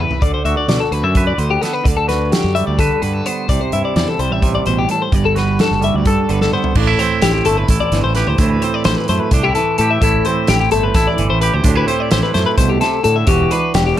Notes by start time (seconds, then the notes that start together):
Already playing: E4 G4
0.00 E3 B4
0.11 floor tom
0.22 D2 D3 D5, kick, closed hi-hat
0.34 C5
0.45 D2 F#4 E5, closed hi-hat
0.57 D5
0.68 B2 D5, snare, closed hi-hat
0.80 A4
0.91 D2 B4, closed hi-hat
1.03 F#2 E5
1.15 B4, kick, closed hi-hat
1.27 D5
1.38 D2 D3 C5, closed hi-hat
1.51 G4
1.62 B3 A4, snare, closed hi-hat
1.73 B4
1.84 D2 D3 D5, kick, closed hi-hat
1.97 A4
2.08 F#4 B4, snare, closed hi-hat
2.32 G4, snare, closed hi-hat
2.44 F#2
2.55 G3 E5, closed hi-hat
2.67 D2 D5
2.79 D3 A4 B4, kick, closed hi-hat
3.02 G2 D3 B4, closed hi-hat
3.14 A4
3.26 B3 C5, closed hi-hat
3.49 C2 C3 D5, kick, closed hi-hat
3.61 C5
3.72 G2 E4 E5, closed hi-hat
3.85 D5
3.96 E2 D5, snare, closed hi-hat
4.08 A4
4.19 C2 G3 C5, closed hi-hat
4.30 A1 E5
4.42 C3, kick, closed hi-hat
4.55 D5
4.66 A1 B2 C5, closed hi-hat
4.79 G4
4.89 A2 A4, closed hi-hat
5.02 C5
5.12 G1 G2 D5, kick, closed hi-hat
5.25 A4
5.35 F#4 B4, snare, closed hi-hat
5.59 A4, snare, closed hi-hat
5.71 F#1
5.81 G3 E5, closed hi-hat
5.94 D2 D5
6.05 G2 A4, kick, closed hi-hat
6.29 G1 D3 B4, closed hi-hat
6.41 A4, snare
6.52 B3 C5, mid tom
6.64 floor tom
6.75 A1 A2 D4 A4, kick, crash
6.87 E4
6.99 C4 C5, closed hi-hat
7.22 A1 G4, snare, closed hi-hat
7.34 G4
7.45 G1 A3 A4, closed hi-hat
7.57 B4
7.68 A1 E4 A4, kick, closed hi-hat
7.80 D5
7.92 G1 E3, snare, closed hi-hat
8.04 A1 C5
8.15 G4 B4, snare, closed hi-hat
8.27 D2 C5
8.38 D2 A2 E4, kick, closed hi-hat
8.50 B4
8.62 C4 C5, closed hi-hat
8.74 D5
8.84 A1 C5, snare, closed hi-hat
8.97 B4
9.08 F#2 A3 C5, closed hi-hat
9.20 B4
9.31 C2 D4 C5, kick, closed hi-hat
9.43 E4 G4
9.55 E3 A4, closed hi-hat
9.78 A2 G4 A4, closed hi-hat
9.91 E5
10.02 A1 A2 E4 A4, kick, closed hi-hat
10.25 C4 C5, closed hi-hat
10.47 A1 G4, snare, closed hi-hat
10.60 G4
10.71 G1 A3 A4, closed hi-hat
10.83 B4
10.94 A1 E4 A4, kick, snare, closed hi-hat
11.07 D5
11.18 G1 E3, closed hi-hat
11.30 A1 C5
11.41 G4 B4, closed hi-hat
11.54 D2 C5
11.64 D2 A2 D4, kick, closed hi-hat
11.75 E4 B4
11.87 C4 C5, closed hi-hat
12.00 D5
12.11 A1 C5, snare, closed hi-hat
12.23 B4
12.34 F#2 A3 C5, snare, closed hi-hat
12.46 B4
12.58 C2 B2 C5, kick, closed hi-hat
12.69 G4
12.81 C3 A4, snare, closed hi-hat
13.04 A2 D3 A4, closed hi-hat
13.16 E5
13.27 E1 E3 F#4 G4, kick, closed hi-hat
13.51 D4 B4, closed hi-hat
13.74 E1 G4, snare, closed hi-hat
13.86 G4